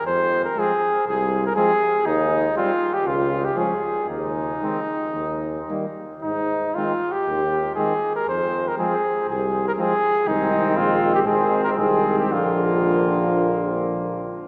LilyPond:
<<
  \new Staff \with { instrumentName = "Cornet" } { \time 4/4 \key f \minor \tempo 4 = 118 c''8. bes'16 aes'4 aes'8. bes'16 aes'4 | ees'4 f'8. g'16 f'8. g'16 aes'4 | ees'2.~ ees'8 r8 | ees'4 f'8. g'4~ g'16 aes'8. bes'16 |
c''8. bes'16 aes'4 aes'8. bes'16 aes'4 | \key bes \mixolydian ees'4 f'8. g'16 aes'8. bes'16 aes'8. g'16 | f'2. r4 | }
  \new Staff \with { instrumentName = "Trumpet" } { \time 4/4 \key f \minor r4 c'4 r4 c'4 | r4 c'4 r4 des'4 | r4 c'4 r4 bes4 | r4 c'4 r4 c'4 |
r4 c'4 r4 c'4 | \key bes \mixolydian c'2 c'4 c'4 | bes2.~ bes8 r8 | }
  \new Staff \with { instrumentName = "French horn" } { \clef bass \time 4/4 \key f \minor r4 aes4 r4 aes4 | r4 g4 r4 aes4 | r4 aes4 r4 g4 | r4 aes4 r4 aes4 |
r4 aes4 r4 aes4 | \key bes \mixolydian aes2 aes4 aes4 | f2.~ f8 r8 | }
  \new Staff \with { instrumentName = "Euphonium" } { \clef bass \time 4/4 \key f \minor r4 f4 r4 f4 | r4 g4 r4 f4 | r4 ees4 r4 ees4 | r4 ees4 r4 ees4 |
r4 f4 r4 f4 | \key bes \mixolydian ees2 ees4 ees4 | d2.~ d8 r8 | }
  \new Staff \with { instrumentName = "Bass trombone" } { \clef bass \time 4/4 \key f \minor f,4 r4 c,4 r4 | ees,4 r4 des,4 r4 | ees,4 r4 ees,4 r4 | aes,4 r4 ees,4 r4 |
f,4 r4 c,4 r4 | \key bes \mixolydian c,4 bes,,4 aes,,4 c,4 | bes,,2.~ bes,,8 r8 | }
>>